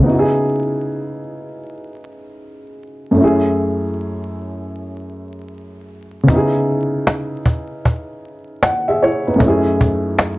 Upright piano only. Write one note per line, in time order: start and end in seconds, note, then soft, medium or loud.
0.00 3.10 C#3 medium
0.00 3.12 B3 medium
0.06 3.13 D#4 medium
0.06 3.15 E4 medium
0.12 0.17 F#4 medium
0.19 3.20 G#4 medium
3.11 6.22 F#2 medium
3.11 6.23 A3 medium
3.18 6.25 C#4 medium
3.18 6.26 E4 medium
3.24 6.28 G#4 medium
6.23 9.34 C#3 medium
6.23 9.35 B3 medium
6.30 8.59 D#4 medium
6.30 8.60 E4 medium
6.36 8.62 G#4 medium
8.63 8.86 F#5 medium
8.88 9.01 G#4 medium
8.88 9.01 E5 medium
9.03 9.26 E4 medium
9.03 9.25 C#5 medium
9.27 9.64 D#4 soft
9.27 9.64 B4 medium
9.36 10.39 F#2 medium
9.36 10.39 A3 medium
9.42 10.39 C#4 medium
9.42 10.39 E4 medium
9.48 10.39 G#4 medium